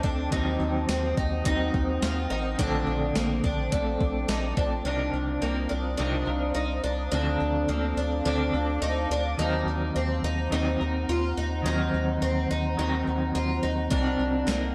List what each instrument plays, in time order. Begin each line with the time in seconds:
Already playing: ambient pad C5 G5 A5 D6
0.03 analog synth bass D2, twelve-string acoustic guitar D4, clean electric guitar D4 A4, kick
0.08 clean electric guitar C4
0.30 analog synth bass D#2, clean electric guitar D#3 F#3 C4, twelve-string acoustic guitar D#4, ambient pad F#5 D#6, kick, closed hi-hat
0.34 clean electric guitar D#4 A#4
0.60 analog synth bass D#2
0.89 analog synth bass D#2, twelve-string acoustic guitar C4, snare, closed hi-hat, tambourine
1.17 analog synth bass D#2, twelve-string acoustic guitar D#4, kick
1.44 analog synth bass D#2, clean electric guitar F#3 C4 D#4, twelve-string acoustic guitar D#4, kick, closed hi-hat
1.49 clean electric guitar A#4
1.74 analog synth bass D#2, kick
2.02 analog synth bass D#2, twelve-string acoustic guitar F4, snare, closed hi-hat, tambourine
2.30 analog synth bass A1, clean electric guitar C4 D#4 A#4, twelve-string acoustic guitar D#4
2.58 analog synth bass A#1, clean electric guitar A#2 D3 A3 C4, twelve-string acoustic guitar D4, ambient pad A5 D6, kick, closed hi-hat
2.62 clean electric guitar F4 A4
2.87 analog synth bass A#1
3.15 analog synth bass A#1, twelve-string acoustic guitar A#3, snare, closed hi-hat, tambourine
3.44 analog synth bass A#1, twelve-string acoustic guitar D4, kick
3.72 analog synth bass A#1, clean electric guitar A3 C4 F4 A4, twelve-string acoustic guitar D4, kick, closed hi-hat
4.00 analog synth bass A#1, kick
4.28 analog synth bass A#1, twelve-string acoustic guitar D#4, snare, closed hi-hat, tambourine
4.57 analog synth bass A#1, clean electric guitar A3 C4 F4 A4, twelve-string acoustic guitar D4, kick
4.85 analog synth bass C2, clean electric guitar C3 F3 C4 D#4 A#4, twelve-string acoustic guitar D4, ambient pad C5 F5 A#5 D#6
5.13 analog synth bass C2
5.41 analog synth bass C2, clean electric guitar F3 C4 D#4 A#4, twelve-string acoustic guitar A#3
5.69 analog synth bass C2, twelve-string acoustic guitar D4
5.97 analog synth bass C2, clean electric guitar C3 F3 C4 D#4, twelve-string acoustic guitar D4
6.02 clean electric guitar A#4
6.27 analog synth bass C2, clean electric guitar D#4 A#4
6.32 clean electric guitar C4
6.55 analog synth bass C2, twelve-string acoustic guitar D#4
6.84 analog synth bass C2, twelve-string acoustic guitar D4
7.11 analog synth bass D2, clean electric guitar D3 F3 C4 D4, twelve-string acoustic guitar D4, ambient pad C5 F5 A5 D6
7.15 clean electric guitar A4
7.41 analog synth bass D2
7.69 analog synth bass D2, clean electric guitar F3 C4 D4, twelve-string acoustic guitar A#3
7.73 clean electric guitar A4
7.97 analog synth bass D2, twelve-string acoustic guitar D4
8.25 analog synth bass D2, clean electric guitar D3 F3 C4 D4 A4, twelve-string acoustic guitar D4
8.53 analog synth bass D2, clean electric guitar D4 A4
8.58 clean electric guitar C4
8.82 analog synth bass D2, twelve-string acoustic guitar D#4
9.10 analog synth bass D2, twelve-string acoustic guitar D4
9.37 analog synth bass D#2, clean electric guitar D#3 F#3 C4, twelve-string acoustic guitar D#4, ambient pad C5 F#5 A#5
9.42 clean electric guitar D#4 A#4
9.66 analog synth bass D#2
9.96 analog synth bass D#2, twelve-string acoustic guitar C4
10.23 analog synth bass D#2, twelve-string acoustic guitar D#4
10.50 analog synth bass D#2, clean electric guitar D#3 F#3 C4 D#4 A#4, twelve-string acoustic guitar D#4
10.80 analog synth bass D#2, clean electric guitar C4 D#4 A#4
11.09 analog synth bass D#2, twelve-string acoustic guitar F4
11.37 analog synth bass D#2, twelve-string acoustic guitar D#4
11.62 analog synth bass D#2, clean electric guitar D#3 F#3 C4, twelve-string acoustic guitar D#4
11.67 clean electric guitar D#4 A#4
11.94 analog synth bass D#2
12.22 analog synth bass D#2, twelve-string acoustic guitar C4
12.51 analog synth bass D#2, twelve-string acoustic guitar D#4
12.77 analog synth bass D#2, clean electric guitar D#3 F#3 C4, twelve-string acoustic guitar D#4
12.82 clean electric guitar D#4 A#4
13.08 analog synth bass D#2
13.35 analog synth bass D#2, twelve-string acoustic guitar F4
13.63 analog synth bass D#2, twelve-string acoustic guitar D#4
13.90 analog synth bass C2, clean electric guitar C3 F3 C4 D#4 A#4, twelve-string acoustic guitar D4, ambient pad D5 F5 G5, kick, closed hi-hat
14.19 analog synth bass C2
14.47 analog synth bass C2, clean electric guitar F3 C4, twelve-string acoustic guitar A#3, snare, closed hi-hat, tambourine
14.51 clean electric guitar D#4 A#4